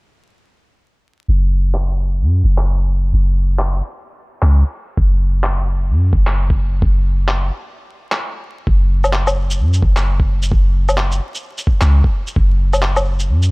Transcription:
1.28 808-style bass F#1
1.74 clap
2.21 808-style bass F#2
2.44 808-style bass F#1
2.58 clap
3.13 808-style bass F#1
3.59 clap
4.42 808-style bass C#2, clap
4.97 808-style bass F#1, kick
5.44 clap
5.90 808-style bass F#2
6.13 808-style bass F#1, kick
6.27 clap
6.50 kick
6.82 808-style bass F#1, kick
7.28 clap
8.12 clap
8.67 808-style bass F#1, kick
9.04 low woodblock, shaker
9.13 clap
9.27 low woodblock, shaker
9.50 shaker
9.59 808-style bass F#2
9.73 shaker
9.82 808-style bass F#1, kick
9.96 clap, shaker
10.20 kick
10.43 shaker
10.52 808-style bass F#1, kick
10.89 low woodblock, shaker
10.97 clap
11.12 shaker
11.35 shaker
11.58 shaker
11.67 kick
11.81 808-style bass C#2, clap, shaker
12.04 kick
12.27 shaker
12.36 808-style bass F#1, kick
12.73 low woodblock, shaker
12.82 clap
12.96 low woodblock, shaker
13.20 shaker
13.29 808-style bass F#2
13.43 shaker

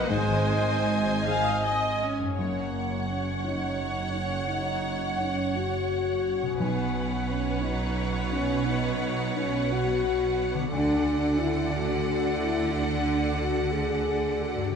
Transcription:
Already playing: harp D#3 F#3 B3 F#4 B4 D#5 F#5 D#6, grand piano B3 F#4 D#5, clarinet B4
0.07 double bass section G#1, harp G#2, grand piano G#2, cor anglais G#3, french horn section G#3, cello section G#3, viola section C5, clarinet C5, violin section D#5 G#5, flute D#5
0.30 harp D#3
0.49 harp C4
0.68 harp G#4
0.87 harp D#5
1.05 harp C5
1.25 grand piano C4 G#4 D#5, viola section F5, harp G#5
1.44 harp D#6
1.62 viola section D#5, harp G#5
1.82 harp C5
2.00 viola section C#4, harp D#5
2.19 harp F#2 G#4
2.24 harp C#4
2.28 harp A#4
2.33 harp C#5
2.38 double bass section F#1, grand piano F#2, cello section F#2, french horn section A#3, viola section C#5, violin section F#5
3.09 french horn section C#4
3.44 grand piano C#4, french horn section D#4
4.13 french horn section C#4
4.49 french horn section D#4
5.22 french horn section C#4
5.57 french horn section F#4
6.42 harp B2
6.47 harp C#4
6.51 harp F#4
6.56 harp B4
6.60 grand piano B1, double bass section B1, cello section B2, french horn section B3, viola section B4, violin section C#5 F#5
7.31 french horn section C#4
7.61 grand piano C#4, french horn section D#4
8.31 french horn section C#4
8.65 french horn section D#4
9.36 french horn section C#4
9.72 french horn section F#4
10.54 harp D3
10.59 harp D4
10.63 harp F#4
10.68 harp A4, viola section A4
10.72 grand piano D2, double bass section D2, cello section D3, french horn section D4, violin section D5 F#5
11.39 french horn section E4
11.70 grand piano D4, french horn section F#4
12.37 french horn section E4
12.72 french horn section D4
13.37 french horn section F#4
13.72 french horn section G#4
14.42 french horn section F#4
14.55 harp G2
14.60 harp D4
14.64 harp G4
14.69 harp B4

